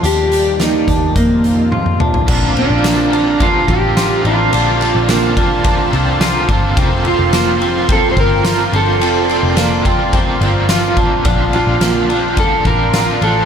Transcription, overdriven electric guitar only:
\new Staff \with { instrumentName = "Overdriven electric guitar" } { \time 4/4 \key bes \major \tempo 4 = 107 r1 | <bes, d bes c' f'>8 <bes c' f'>8 <bes, d bes c' f'>8 <bes c' f'>8 <d bes c' f'>8 <bes c' f'>8 <bes, d bes c' f'>8 <bes c' f'>8 | <bes, d bes c' f'>8 <bes c' f'>8 <bes, d bes c' f'>8 <bes c' f'>8 <d bes c' f'>8 <bes c' f'>8 <bes, d bes c' f'>8 <bes c' f'>8 | <f bes c' f'>8 <bes c' f'>8 <f bes c' f'>8 <bes c' f'>8 <f bes c' f'>8 <bes c' f'>8 <f bes c' f'>8 <bes c' f'>8 |
<f bes c' f'>8 <bes c' f'>8 <f bes c' f'>8 <bes c' f'>8 <f bes c' f'>8 <bes c' f'>8 <f bes c' f'>8 <bes c' f'>8 | <bes, d f c' d'>8 <f c' d'>8 <bes, d f c' d'>8 <f c' d'>8 <d f c' d'>8 <f c' d'>8 <bes, d f c' d'>8 <f c' d'>8 | }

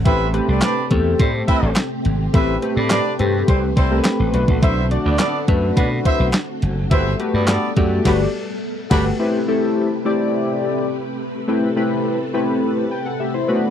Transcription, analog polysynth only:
\new Staff \with { instrumentName = "Analog polysynth" } { \time 4/4 \key a \dorian \tempo 4 = 105 << { r1 | r1 | r1 | r1 |
r1 | r2 r8 <b' g''>16 <a' fis''>16 <g' e''>16 <e' c''>8 r16 | } \\ { <a c' g' b'>16 r16 <a c' g' b'>8. r16 <a c' g' a'>4. r4 | <a c' g' b'>16 r16 <a c' g' b'>8. r16 <a c' g' b'>4 r16 <a c' g' bes' b'>8. <a d' fis' b'>8~ | <a d' fis' b'>16 r16 <a d' fis' d''>8. r16 <a d' fis' b'>4. r4 | <a fis' g' b'>16 r16 <a fis' g' b'>8. r16 <a fis' g' d''>8 <a fis' g' d''>8 r4 <a fis' g' b'>8 |
<a c' e' g' b'>16 r16 <a c' e' g' a'>8. r16 <a c' e' g' d''>4. r4 | <a c' e' g' b'>16 r16 <a c' e' g' b'>8. r16 <a c' e' g' b'>4 r4 <a b cis' d' fis' b'>8 | } >> }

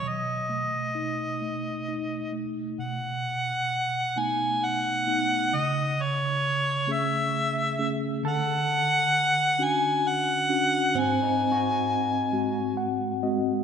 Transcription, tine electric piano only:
\new Staff \with { instrumentName = "Tine electric piano" } { \time 6/8 \key b \mixolydian \tempo 4. = 44 << { r2. | r2. | r2. | r2. |
r2 fis''8 dis''8 | } \\ { b,8 a8 dis'8 a8 dis'8 a8 | b,4. <a b dis'>4 <a b dis'>8 | cis4. <a cis' gis'>4 <a cis' gis'>8 | d4. <cis' d' fis'>4 <cis' d' fis'>8 |
gis,4. <gis bis fis'>4 <gis bis fis'>8 | } >> }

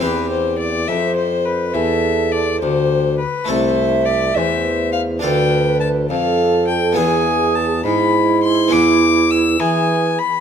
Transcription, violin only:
\new Staff \with { instrumentName = "Violin" } { \time 12/8 \key c \major \tempo 4. = 69 b'8 c''8 d''8 e''8 c''8 b'8 e''4 d''8 c''4 b'8 | \key e \phrygian c''4 d''8 e''4 f''8 g''4 a''8 f''4 g''8 | gis''4 a''8 b''4 c'''8 d'''4 e'''8 gis''4 b''8 | }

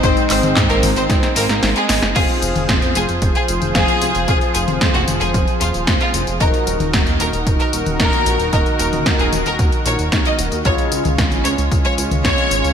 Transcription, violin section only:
\new Staff \with { instrumentName = "Violin section" } { \time 4/4 \key f \phrygian \tempo 4 = 113 <c' c''>8 <c' c''>8. <bes bes'>8 <c' c''>8. <bes bes'>8. <aes aes'>8. | aes'8. r8. aes'8. aes'8. aes'4 | aes'8 aes'8. ges'8 aes'8. f'8. f'8. | bes'8. r8. bes'8. bes'8. bes'4 |
bes'8 bes'8. aes'8 bes'8. des''8. ees''8. | des''8. r8. des''8. des''8. des''4 | }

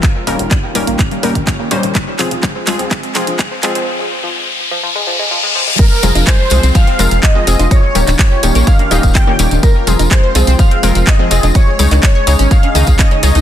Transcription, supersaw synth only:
\new Staff \with { instrumentName = "Supersaw synth" } { \time 4/4 \key f \minor \tempo 4 = 125 r1 | r1 | r1 | bes'4 c''4 f''4 ees''4 |
des''4 des''4 f''4 g''8. r16 | bes'4 c''4 f''4 ees''4 | des''4 des''4 f''4 ees''4 | }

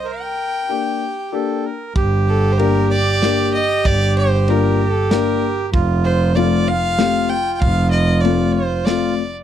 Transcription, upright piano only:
\new Staff \with { instrumentName = "Upright piano" } { \time 3/4 \key g \minor \tempo 4 = 95 r4 <bes d' g'>8 r8 <bes d' g'>8 r8 | r4 <bes d' g'>8 r8 <bes d' g'>8 r8 | r4 <bes d' f'>8 r8 <bes d' g'>8 r8 | r4 <a c' f'>8 r8 <a c' g'>8 r8 |
r4 <a c' f'>8 r8 <a c' f'>8 r8 | }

